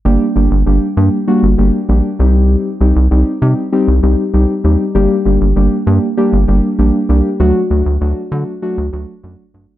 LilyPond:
<<
  \new Staff \with { instrumentName = "Synth keys" } { \time 4/4 \key g \minor \tempo 4 = 98 <g bes d' g'>8 <g bes d' g'>8 <g bes d' g'>8 <g bes d' g'>8 <g bes d' fis'>8 <g bes d' g'>8 <g bes d' g'>8 <g c' ees' g'>8~ | <g c' ees' g'>8 <g c' ees' g'>8 <g c' ees' g'>8 <g c' ees' g'>8 <g c' ees' g'>8 <g c' ees' g'>8 <g c' ees' g'>8 <g c' ees' g'>8 | <g bes d' g'>8 <g bes d' g'>8 <g bes d' g'>8 <g bes d' g'>8 <g bes d' g'>8 <g bes d' g'>8 <g bes d' g'>8 <g bes d' g'>8 | <fis a d' fis'>8 <fis a d' fis'>8 <fis a d' fis'>8 <fis a d' fis'>8 <fis a d' fis'>8 <fis a d' fis'>8 <fis a d' fis'>8 <fis a d' fis'>8 | }
  \new Staff \with { instrumentName = "Analog synth bass" } { \clef bass \time 4/4 \key g \minor g,,16 r16 g,,16 g,,16 g,,16 r16 g,16 r8 g,,16 g,,16 r16 bes,,16 r16 c,8~ | c,16 r16 c,16 c,16 c,16 r16 c16 r8 c,16 c,16 r16 c,16 r16 ees,16 r16 | g,,16 r16 g,,16 g,,16 g,,16 r16 g,16 r8 g,,16 g,,16 r16 bes,,16 r16 c,16 r16 | d,16 r16 d,16 d,16 d,16 r16 d16 r8 d,16 d,16 r16 fis,16 r16 g,16 r16 | }
>>